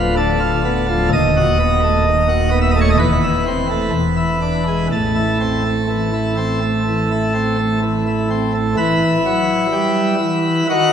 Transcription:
0.00 1.08 D1 medium
0.00 1.08 D2 medium
0.00 0.14 F3 medium
0.00 0.14 B4 loud
0.17 0.38 D3 medium
0.17 1.09 A4 loud
0.40 0.61 F4 medium
0.65 0.86 B3 medium
0.89 1.09 F3 medium
1.12 2.94 D#1 medium
1.12 2.94 D#2 medium
1.12 2.58 D#5 loud
1.37 1.57 F#4 medium
1.59 1.80 B3 medium
1.83 2.03 A3 medium
2.06 2.26 D#3 medium
2.28 2.49 F#4 medium
2.51 2.72 B3 medium
2.62 2.69 E5 medium
2.71 2.79 D#5 loud
2.76 2.95 A3 medium
2.81 2.88 C#5 medium
2.90 2.97 D#5 loud
2.99 3.90 E1 medium
2.99 3.90 E2 medium
2.99 4.86 B4 loud
3.23 3.43 E4 medium
3.47 3.67 C4 medium
3.70 3.90 A3 soft
3.93 4.88 E1 medium
3.93 4.87 E2 medium
4.16 4.38 E4 soft
4.42 4.63 D4 soft
4.67 4.87 G#3 soft
4.92 8.75 A1 soft
4.92 8.75 A2 medium
4.92 7.79 A4 medium
5.15 5.37 E4 soft
5.40 5.62 C4 soft
5.66 5.87 A3 soft
5.90 6.11 E3 soft
6.13 6.35 E4 soft
6.37 6.59 C4 soft
6.61 6.83 A3 soft
6.87 7.08 E3 soft
7.11 7.32 E4 soft
7.34 7.56 C4 soft
7.58 7.80 A3 soft
7.82 8.03 E3 soft
8.07 8.28 E4 soft
8.30 8.52 C4 soft
8.54 8.74 A3 soft
8.77 9.17 E3 medium
8.77 10.67 E4 soft
8.77 10.67 B4 medium
9.26 9.66 F#3 medium
9.73 10.14 G3 medium
10.20 10.63 E3 medium
10.70 10.93 D#3 medium
10.70 10.93 F#4 soft
10.70 10.93 F#5 loud

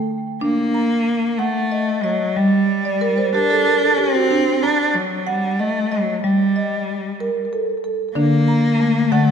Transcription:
0.00 0.38 A3 medium
0.00 0.74 G5 medium
0.41 1.40 A#3 medium
0.41 1.07 D4 medium
0.74 1.71 A#5 medium
1.38 2.05 A3 medium
1.38 2.04 F#5 medium
1.72 2.02 D#5 medium
2.03 2.38 F#3 medium
2.03 2.68 D#5 medium
2.36 3.34 G3 medium
2.36 3.01 G3 medium
2.85 3.15 D5 medium
3.01 3.31 A#4 medium
3.18 3.47 C5 medium
3.33 3.99 D4 medium
3.33 3.64 G4 medium
3.33 3.65 A#4 medium
3.50 3.80 A4 medium
3.67 3.96 A#4 medium
3.82 4.12 A4 medium
3.97 4.64 C4 loud
3.97 4.28 G4 medium
4.15 4.44 F#4 medium
4.31 4.94 D4 medium
4.63 4.95 D4 medium
4.63 5.59 A#5 medium
4.94 5.29 F#3 medium
5.27 5.61 G3 medium
5.27 5.91 F#5 medium
5.59 5.93 A3 medium
5.59 5.90 D#5 medium
5.91 6.22 F#3 medium
5.91 6.55 D#5 medium
6.23 7.47 G3 medium
6.23 6.87 G3 medium
6.56 7.52 D#5 medium
7.20 7.84 A#4 medium
7.53 7.83 A4 medium
7.84 8.48 A4 medium
8.15 8.75 D3 medium
8.15 9.12 A#3 medium
8.15 8.80 D4 medium
8.48 9.31 A#5 medium
8.80 9.09 A3 medium
9.11 9.31 D3 medium
9.11 9.31 A3 medium
9.11 9.31 F#5 medium

